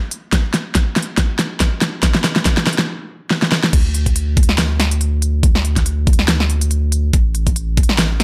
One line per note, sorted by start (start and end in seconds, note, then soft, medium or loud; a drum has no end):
0.11 closed hi-hat medium
0.33 kick medium
0.33 snare medium
0.33 closed hi-hat medium
0.54 snare medium
0.54 closed hi-hat medium
0.75 kick loud
0.75 snare medium
0.75 closed hi-hat medium
0.96 snare medium
0.96 closed hi-hat soft
1.02 closed hi-hat medium
1.18 kick loud
1.18 snare medium
1.18 closed hi-hat medium
1.39 snare medium
1.39 closed hi-hat medium
1.60 kick medium
1.60 snare medium
1.60 closed hi-hat medium
1.82 snare medium
1.82 closed hi-hat medium
2.03 kick loud
2.03 snare medium
2.03 closed hi-hat medium
2.15 snare medium
2.24 snare loud
2.24 closed hi-hat medium
2.36 snare medium
2.45 kick medium
2.45 snare loud
2.45 closed hi-hat medium
2.57 snare medium
2.67 snare loud
2.67 closed hi-hat soft
2.73 closed hi-hat medium
2.79 snare medium
3.31 snare medium
3.42 snare medium
3.52 snare medium
3.64 snare medium
3.73 7.12 D2 medium
3.73 kick loud
3.73 closed hi-hat medium
3.73 crash loud
3.94 closed hi-hat medium
4.06 kick medium
4.06 closed hi-hat medium
4.16 closed hi-hat medium
4.37 kick loud
4.37 closed hi-hat soft
4.43 closed hi-hat medium
4.49 snare medium
4.58 snare loud
4.58 closed hi-hat medium
4.80 snare medium
4.80 closed hi-hat medium
4.91 closed hi-hat medium
5.01 closed hi-hat medium
5.22 closed hi-hat medium
5.43 kick loud
5.43 closed hi-hat medium
5.55 snare medium
5.65 closed hi-hat medium
5.76 kick medium
5.76 snare soft
5.76 closed hi-hat medium
5.86 closed hi-hat medium
6.07 kick loud
6.07 closed hi-hat soft
6.13 closed hi-hat medium
6.19 snare medium
6.28 snare loud
6.28 closed hi-hat medium
6.40 snare medium
6.50 closed hi-hat medium
6.61 closed hi-hat medium
6.71 closed hi-hat medium
6.92 closed hi-hat medium
7.13 8.24 A1 medium
7.13 kick loud
7.13 closed hi-hat medium
7.35 closed hi-hat medium
7.47 kick medium
7.47 closed hi-hat medium
7.56 closed hi-hat medium
7.77 kick loud
7.77 closed hi-hat soft
7.83 closed hi-hat medium
7.89 snare medium
7.99 snare loud
7.99 closed hi-hat medium
8.20 snare medium
8.20 closed hi-hat medium